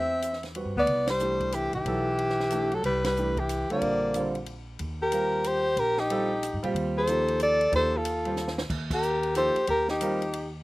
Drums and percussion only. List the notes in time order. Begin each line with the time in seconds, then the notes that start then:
0.22 hi-hat pedal, ride
0.33 snare
0.43 snare, ride
0.55 ride
0.87 ride
1.07 snare, ride
1.19 hi-hat pedal
1.40 kick, ride
1.52 hi-hat pedal, ride
1.73 ride
1.86 ride
2.19 ride
2.30 snare
2.40 snare
2.50 hi-hat pedal, ride
2.72 ride
2.84 ride
3.04 snare, ride
3.16 hi-hat pedal
3.37 kick, ride
3.49 hi-hat pedal, ride
3.70 ride
3.81 ride
4.14 hi-hat pedal, ride
4.35 ride
4.46 ride
4.79 ride
5.12 hi-hat pedal, ride
5.44 hi-hat pedal, ride
5.77 ride
5.98 snare
6.10 ride
6.43 hi-hat pedal, ride
6.63 ride
6.76 ride
7.07 hi-hat pedal, ride
7.28 ride
7.40 hi-hat pedal, ride
7.61 ride
7.73 ride
8.05 hi-hat pedal, ride
8.25 ride
8.37 snare, hi-hat pedal
8.48 snare
8.58 snare
8.70 kick, crash
8.91 kick, crash
9.02 hi-hat pedal
9.23 ride
9.35 hi-hat pedal, ride
9.56 ride
9.67 ride
9.88 snare
10.01 hi-hat pedal, ride
10.22 ride
10.33 ride